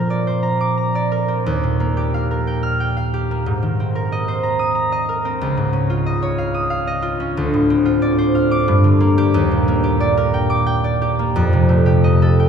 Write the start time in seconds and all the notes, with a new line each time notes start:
Already playing: A#2 F3 C4 A#4 C5 F5 A#5
0.10 D5
0.27 C5
0.43 A#5
0.61 D6
0.78 A#5
0.95 D5
1.12 A#4
1.28 C4
1.46 D#2
1.64 A#2
1.80 A#3
1.97 G4
2.14 F5
2.31 A#4
2.47 G5
2.63 F6
2.80 G5
2.97 F5
3.14 G4
3.31 A#3
3.46 G#2
3.63 D#3
3.80 C4
3.95 A#4
4.12 D#5
4.28 C5
4.43 A#5
4.59 D#6
4.75 A#5
4.92 D#5
5.09 A#4
5.25 C4
5.41 C#2
5.57 G#2
5.73 C#4
5.90 F4
6.06 D#5
6.22 C#5
6.38 F5
6.54 D#6
6.70 F5
6.87 D#5
7.02 F4
7.20 C#4
7.37 D2
7.54 A2
7.70 C4
7.85 F4
8.02 D5
8.18 C5
8.35 F5
8.51 D6
8.68 G2
8.84 D3
9.01 A#3
9.18 G4
9.34 D#2
9.51 A#2
9.68 A#3
9.84 G4
10.00 D5
10.17 A#4
10.34 G5
10.50 D6
10.66 G5
10.84 D5
11.02 G4
11.19 A#3
11.36 F2
11.53 C3
11.69 A3
11.86 G4
12.04 D#5
12.22 A4
12.39 G5